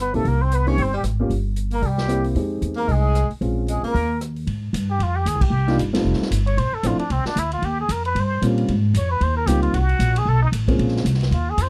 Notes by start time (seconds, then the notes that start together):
Already playing: G1
0.00 B3 B4
0.13 B1 A3 A#3 C4 D#4 G4 A4, open hi-hat
0.25 C2 A#3 A#4, kick, open hi-hat
0.41 C4 C5
0.51 B3 B4, closed hi-hat
0.66 A#3 C4 C#4 D#4 G4 C#5, open hi-hat
0.78 G1 C4 C5, kick, open hi-hat
0.93 G3 G4
1.03 G#1, cross-stick, closed hi-hat
1.20 A#3 C#4 F4 G4
1.30 G1, kick, open hi-hat
1.56 closed hi-hat
1.71 A#3 A#4, open hi-hat
1.82 C2 G3, kick, open hi-hat
1.86 G4
1.98 snare
2.07 A#3 C4 E4 G4, cross-stick, closed hi-hat
2.24 open hi-hat
2.35 F2 G#3 C4 D#4 G4, kick, open hi-hat
2.62 E2, closed hi-hat
2.76 A#3 A#4, open hi-hat
2.88 C2 G#3 G#4, kick, open hi-hat
3.15 cross-stick, closed hi-hat
3.30 muted upright bass stroke, open hi-hat
3.41 A#1 G#3 C4 C#4 F4, kick, open hi-hat
3.68 G#3 G#4, closed hi-hat
3.83 A#3 A#4, muted upright bass stroke, open hi-hat
3.94 D#2, kick, open hi-hat
4.21 cross-stick, closed hi-hat
4.36 open hi-hat
4.47 G#2, kick, ride
4.73 G2, kick, hi-hat pedal, ride
4.90 G4
4.99 F2 F4, kick, ride
5.16 G4
5.25 D#2 G#4, kick, hi-hat pedal, ride
5.35 C2
5.41 G#1 G4, kick, crash
5.50 C2
5.67 G3 A#3 D4 D#4 F4, snare, ride
5.78 G1, kick, hi-hat pedal, ride
5.93 G3 A3 C4 D#4 F4, snare, ride
6.04 F1, kick
6.13 snare
6.20 muted upright bass stroke, snare
6.31 G1, kick, hi-hat pedal, ride
6.47 C#5, ride
6.57 A#1 C5, kick, ride
6.72 A4, muted upright bass stroke
6.83 A1 F3 A3 C4 D4 E4 F4, kick, hi-hat pedal, ride
6.98 D4, muted upright bass stroke, ride
7.10 C2 C4, kick, ride
7.25 D4, muted upright bass stroke, snare
7.36 D2 E4, kick, hi-hat pedal, ride
7.52 F4, ride
7.62 D#2 G4, kick, ride
7.81 G#4
7.89 F2 A#4, kick, hi-hat pedal, ride
8.05 B4, ride
8.15 G2, kick, ride
8.20 C5
8.42 A#2 G3 A#3 C4 C#4 F4, kick, hi-hat pedal, ride
8.58 ride
8.68 G#2, kick, ride
8.94 F2 C#5, kick, hi-hat pedal, ride
9.11 B4
9.21 D#2 C5, kick, ride
9.37 A#4
9.46 C#2 G3 A#3 C4 D#4 F4 G4, kick, hi-hat pedal, ride
9.62 F4, ride
9.74 C2 F#4, kick, ride
9.89 ride
9.99 A#1, kick, hi-hat pedal, ride
10.16 G#4, ride
10.26 B1 A4, kick
10.42 D#4
10.52 A1, kick, hi-hat pedal, ride
10.68 G#3 A#3 C4 C#4 F4, kick, ride
10.79 A#1, kick, ride
10.88 snare
10.97 snare
11.05 C2, kick, hi-hat pedal, ride
11.14 snare
11.21 snare, ride
11.31 D#2 F4, kick, ride
11.50 G#4
11.57 F2, kick, hi-hat pedal, ride
11.62 C5